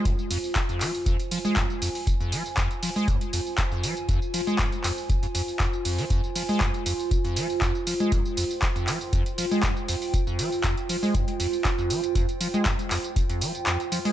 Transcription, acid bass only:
X:1
M:4/4
L:1/16
Q:1/4=119
K:Cdor
V:1 name="Acid bass" clef=bass
F,, z F,, z2 F,, F, z F,, z F, _A, F,, z F,, z | z F,, F, z F,, z F, _A, F,, z F,, z2 F,, F, z | F,, z F, _A, F,, z F,, z2 F,, F,, z F,, z F,, F, | F,, z F, _A, F,, z F,, z2 F,, F, z F,, z F, A, |
F,, z F,, z2 F,, F, z F,, z F, _A, F,, z F,, z | z F,, F, z F,, z F, _A, F,, z F,, z2 F,, F, z | F,, z F, _A, F,, z F,, z2 F,, F, z F,, z F, A, |]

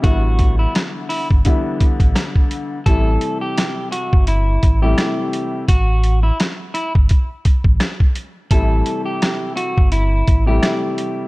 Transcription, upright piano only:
X:1
M:4/4
L:1/16
Q:"Swing 16ths" 1/4=85
K:Ador
V:1 name="Upright piano" clef=bass
[D,E,G,B,E]6- [D,E,G,B,E] z [D,E,G,B,E]6- [D,E,G,B,E] z | [C,E,G,A,E]8- [C,E,G,A,E]2 z [C,E,G,A,E]4- [C,E,G,A,E] | z16 | [C,E,G,A,E]8- [C,E,G,A,E]2 z [C,E,G,A,E]4- [C,E,G,A,E] |]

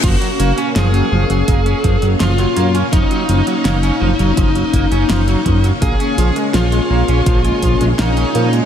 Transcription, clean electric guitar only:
X:1
M:4/4
L:1/16
Q:1/4=83
K:F#
V:1 name="Clean electric guitar" clef=bass
E, F, A, C E, F, E, F, A, C E, F, E, F, A, C | E, F, E, F, A, C E, F, E, F, A, C E, F, E, F, | A, C E, G, E, G, A, C E, G, E, G, A, C E, G, |]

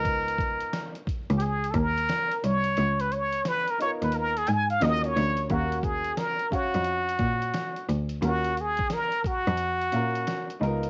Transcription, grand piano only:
X:1
M:4/4
L:1/16
Q:"Swing 16ths" 1/4=88
K:Ebm
V:1 name="Grand piano"
[CEFB]4- [CEFB] z8 z3 | z6 [CEFB]2 z4 [DFGB]4 | [DGBf]6 [DGdf]6 z4 | [DFGB]2 z8 [DGBf]2 z2 [CEFB]2 |]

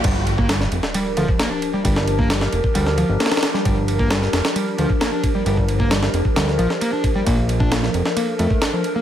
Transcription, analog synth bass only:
X:1
M:4/4
L:1/16
Q:1/4=133
K:Gm
V:1 name="Analog synth bass" clef=bass
G,,,6 F,,, z3 D,, z4 z | G,,,6 F,,, z D,,3 G,,, z4 | G,,,6 F,,, z3 D,, z4 z | G,,,6 F,,, z D,,2 B,,, z4 z |
B,,,6 F,,, z3 F,, z4 z |]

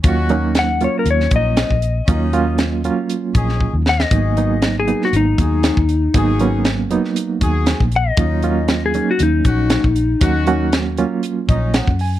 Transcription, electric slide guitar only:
X:1
M:4/4
L:1/16
Q:"Swing 16ths" 1/4=118
K:Ebm
V:1 name="Electric slide guitar"
z4 g2 d B d2 e6- | e6 z8 g e- | e4- e A2 G E8- | E4 z8 z2 g e- |
e4- e A2 G E8- | E4 z12 |]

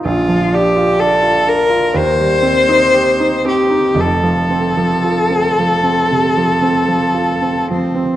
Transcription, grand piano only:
X:1
M:4/4
L:1/16
Q:1/4=57
K:Fmix
V:1 name="Grand piano"
B,,, F, D F D F D F E,, G, C E G E C E | [F,,,F,,] F, C F, F C F, C C, F, C F, F C F, C |]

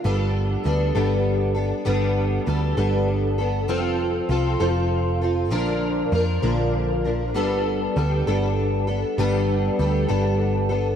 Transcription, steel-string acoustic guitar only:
X:1
M:6/8
L:1/8
Q:3/8=66
K:Gmix
V:1 name="Steel-string acoustic guitar"
[G,B,DA]2 [G,B,DA] [G,B,DA]2 [B,DA] | [G,B,DA]2 [G,B,DA] [G,B,DA]2 [B,DA] | [F,CFA]2 [F,CFA] [F,CFA]2 [CFA] | [_B,,D,F,_B,D_B]2 [F,B,DB] [B,,D,F,B,DB]2 [F,B,DB] |
[G,B,DA]2 [G,B,DA] [G,B,DA]2 [B,DA] | [G,B,DA]2 [G,B,DA] [G,B,DA]2 [B,DA] |]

